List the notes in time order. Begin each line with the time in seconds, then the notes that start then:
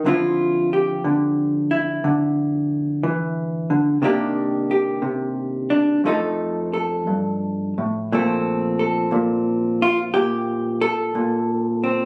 0.06 D3 F3 C4 E4 F4
0.73 G4
1.04 D3
1.71 E4
2.04 D3
3.03 E3
3.70 D3
4.02 C3 D#3 A#3 D4 G4
4.71 G4
5.02 C3
5.70 D4
6.04 F2 F3 A3 D#4 A4
6.73 A4
7.07 G2
7.78 A2
8.12 A#2 F3 A3 C4 A4
8.79 A4
9.12 A#2
9.82 F4
10.14 A#2 G4
10.81 A4
11.15 A#2
11.84 C4